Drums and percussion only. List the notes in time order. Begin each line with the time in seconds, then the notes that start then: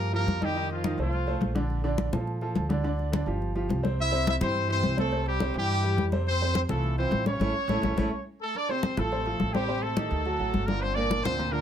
0.00 high conga
0.14 high conga
0.28 high conga
0.42 high conga
0.56 high conga
0.70 high conga
0.84 high conga
0.99 high conga
1.13 high conga
1.27 high conga
1.41 high conga
1.56 high conga
1.70 high conga
1.84 high conga
1.98 high conga
2.13 high conga, low conga
2.27 high conga
2.41 high conga
2.56 high conga
2.70 high conga
2.85 high conga
2.99 high conga
3.13 high conga
3.27 high conga
3.42 high conga
3.56 high conga
3.70 high conga
3.85 high conga
3.99 high conga
4.13 high conga
4.27 high conga
4.41 high conga, low conga
4.55 high conga
4.70 high conga
4.83 high conga
4.98 high conga
5.12 high conga
5.26 high conga
5.40 high conga
5.55 high conga
5.69 high conga
5.83 high conga
5.98 high conga
6.12 high conga
6.27 high conga
6.41 high conga
6.55 high conga
6.69 high conga, low conga
6.83 high conga
6.98 high conga
7.12 high conga
7.26 high conga
7.41 high conga
7.69 high conga
7.83 high conga
7.98 high conga
8.55 high conga
8.69 high conga
8.83 high conga
8.97 high conga, low conga
9.12 high conga
9.26 high conga
9.40 high conga
9.55 high conga
9.69 high conga
9.83 high conga
9.97 high conga
10.12 high conga
10.25 high conga
10.40 high conga
10.54 high conga
10.68 high conga
10.83 high conga
10.97 high conga
11.11 high conga
11.25 high conga, low conga
11.40 high conga, low conga
11.54 high conga